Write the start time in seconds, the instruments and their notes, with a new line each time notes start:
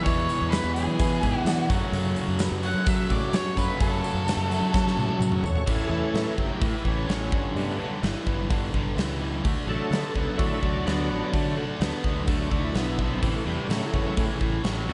Already playing: tonewheel organ G#3 B3 E4 B4
0.03 twelve-string acoustic guitar E2 B2 E3 G#3 B3 G#4, overdriven electric guitar E2 B2 E3, fingered electric bass E2, upright piano E4 G#4, lead electric guitar C#5, kick, open hi-hat, tambourine
0.08 upright piano D5
0.19 tambourine
0.29 twelve-string acoustic guitar E3 G#3 B3 G#4, upright piano E4 G#4 C#5, open hi-hat, tambourine
0.41 fingered electric bass E2
0.50 twelve-string acoustic guitar E3 G#3 B3, upright piano E4 G#4 B4, lead electric guitar B4, snare, open hi-hat, tambourine
0.54 twelve-string acoustic guitar G#4
0.64 fingered electric bass E2
0.74 upright piano E4 G#4 C#5, lead electric guitar G#4, open hi-hat, tambourine
0.87 fingered electric bass E3
0.98 overdriven electric guitar E2 B2 E3, twelve-string acoustic guitar E2 B2 E3 G#3 B3 G#4, upright piano E4 G#4 B4, kick, open hi-hat, tambourine
1.23 fingered electric bass G#2, twelve-string acoustic guitar G#3 B3 G#4, upright piano E4 G#4 B4, kick, open hi-hat, tambourine
1.38 lead electric guitar F#4
1.45 fingered electric bass E3, upright piano E4 G#4 D5, snare, open hi-hat, tambourine
1.68 overdriven electric guitar F#2 C#3 F#3, fingered electric bass F#2, twelve-string acoustic guitar F#3 A3 C#4 F#4, tonewheel organ A3 C#4 F#4 C#5, upright piano F#4 A4 C#5, kick, open hi-hat, tambourine
1.92 fingered electric bass F#2, twelve-string acoustic guitar F#2 C#3 F#3 A3 C#4 F#4, open hi-hat, tambourine
2.05 tambourine
2.16 twelve-string acoustic guitar F#3 A3 C#4 F#4, upright piano F#4 A4 C#5, open hi-hat, tambourine
2.28 fingered electric bass F#2
2.39 twelve-string acoustic guitar F#3 A3 C#4 F#4, upright piano F#4 A4 B4, snare, open hi-hat, tambourine
2.51 fingered electric bass F#2, tambourine
2.62 overdriven electric guitar F#2 C#3 F#3, twelve-string acoustic guitar F#3 A3 C#4 F#4, upright piano F#4 A4 C#5, lead electric guitar F#5, open hi-hat
2.74 fingered electric bass F#3
2.85 twelve-string acoustic guitar F#2 C#3 F#3 A3 C#4 F#4, upright piano F#4 A4 C#5, lead electric guitar E5, kick, open hi-hat, tambourine
3.09 fingered electric bass A2, twelve-string acoustic guitar F#3 A3 C#4 F#4, upright piano F#4 A4 C#5, lead electric guitar D5, kick, open hi-hat
3.31 fingered electric bass F#3, upright piano F#4 A4 C#5, lead electric guitar C#5, snare, open hi-hat, tambourine
3.55 overdriven electric guitar F#2 C#3 F#3, fingered electric bass F#2, twelve-string acoustic guitar A3 C#4 F#4, upright piano F#4 A4 C#5, lead electric guitar B4, kick, open hi-hat, tambourine
3.59 twelve-string acoustic guitar F#3
3.70 tambourine
3.78 fingered electric bass F#2, twelve-string acoustic guitar F#2 C#3 F#3 A3 C#4 F#4, upright piano F#4 A4 B4, lead electric guitar A4, kick, open hi-hat, tambourine
3.93 tambourine
4.03 twelve-string acoustic guitar F#3 A3 C#4 F#4, upright piano F#4 A4 C#5, open hi-hat, tambourine
4.14 fingered electric bass F#2
4.25 twelve-string acoustic guitar F#3 A3 C#4 F#4, upright piano F#4 A4 B4, snare, open hi-hat, tambourine
4.37 fingered electric bass F#2
4.49 overdriven electric guitar F#2 C#3 F#3, upright piano F#4 A4 E5, open hi-hat, tambourine
4.62 fingered electric bass F#3
4.71 twelve-string acoustic guitar F#2 C#3 F#3 A3 C#4 F#4, upright piano F#4 A4 C#5, kick
4.75 snare, tambourine
4.87 snare
4.96 fingered electric bass A2, twelve-string acoustic guitar F#3 A3 C#4 F#4, upright piano F#4 A4 C#5, high tom, tambourine
5.09 high tom
5.19 fingered electric bass F#3, upright piano F#4 A4 C#5, mid tom, tambourine
5.32 mid tom
5.42 fingered electric bass E2, twelve-string acoustic guitar F#3 A3 C#4 F#4, upright piano F#4 A4 C#5, floor tom, tambourine
5.55 floor tom, tambourine
5.67 fingered electric bass A1, overdriven electric guitar A2 E3, tonewheel organ E3 A3 C#4, kick, crash
5.87 fingered electric bass E2, overdriven electric guitar A2 E3, tonewheel organ G#4
5.91 tonewheel organ A4
6.13 overdriven electric guitar A2 F#3, fingered electric bass A2, snare, open hi-hat
6.37 fingered electric bass F#1, overdriven electric guitar A2 F#3, tonewheel organ G4, kick
6.60 overdriven electric guitar A2 E3, fingered electric bass A2, tonewheel organ E4, kick, open hi-hat
6.84 fingered electric bass A1, overdriven electric guitar A2 E3, tonewheel organ C#4, kick
7.07 fingered electric bass A1, overdriven electric guitar A2 F#3, snare, open hi-hat
7.31 fingered electric bass G1, overdriven electric guitar G2 D3, kick
7.55 overdriven electric guitar G2 D3, fingered electric bass G2, tonewheel organ G3 A3 B3, open hi-hat
7.78 overdriven electric guitar G2 D3
8.02 fingered electric bass G1, overdriven electric guitar G2 E3, snare, open hi-hat
8.26 fingered electric bass G1, overdriven electric guitar G2 E3, kick
8.50 overdriven electric guitar G2 D3, kick, open hi-hat
8.73 fingered electric bass G1, overdriven electric guitar G2 D3, kick
8.96 fingered electric bass C#2, overdriven electric guitar G2 E3, snare, open hi-hat
9.20 overdriven electric guitar G2 E3
9.44 fingered electric bass D2, overdriven electric guitar D3 A3, kick, open hi-hat
9.65 fingered electric bass A1, overdriven electric guitar D3 A3, tonewheel organ F#3 A3 G#4
9.70 tonewheel organ D4 A4
9.90 fingered electric bass D3, overdriven electric guitar D3 B3, snare, open hi-hat
10.14 fingered electric bass C#2, overdriven electric guitar D3 B3, tonewheel organ A4, kick
10.37 overdriven electric guitar D3 A3, fingered electric bass D3, tonewheel organ F#3 A3 D4 E4, kick, open hi-hat
10.62 fingered electric bass D2, overdriven electric guitar D3 A3, tonewheel organ F#3 D4, kick
10.86 fingered electric bass D2, overdriven electric guitar D3 B3, snare, open hi-hat
11.09 fingered electric bass A1, overdriven electric guitar D3 B3
11.32 fingered electric bass D3, overdriven electric guitar D3 A3, tonewheel organ F#3 A3 D4, kick, open hi-hat
11.56 overdriven electric guitar D3 A3
11.80 fingered electric bass D2, overdriven electric guitar D3 B3, snare, open hi-hat
12.04 fingered electric bass D2, overdriven electric guitar D3 B3, kick
12.26 overdriven electric guitar D3 A3, tonewheel organ F#3 A3 D4, kick, open hi-hat
12.51 fingered electric bass D2, overdriven electric guitar D3 A3, tonewheel organ D4, kick
12.58 tonewheel organ D#4
12.64 tonewheel organ E4
12.74 fingered electric bass B1, overdriven electric guitar D3 B3, snare, open hi-hat
12.98 overdriven electric guitar D3 B3, kick
13.12 tonewheel organ C4
13.21 fingered electric bass A1, overdriven electric guitar A2 E3, kick, open hi-hat
13.36 tonewheel organ A3
13.45 fingered electric bass E2, overdriven electric guitar A2 E3, tonewheel organ G3
13.69 fingered electric bass A2, overdriven electric guitar A2 F#3, tonewheel organ C#3 A3, snare, open hi-hat
13.92 fingered electric bass F#1, overdriven electric guitar A2 F#3, tonewheel organ E3 A3 C#4, kick
14.17 overdriven electric guitar A2 E3, fingered electric bass A2, kick, open hi-hat
14.39 fingered electric bass A1, overdriven electric guitar A2 E3, kick
14.63 fingered electric bass A1, overdriven electric guitar A2 F#3, snare, open hi-hat
14.87 fingered electric bass E2, overdriven electric guitar A2 F#3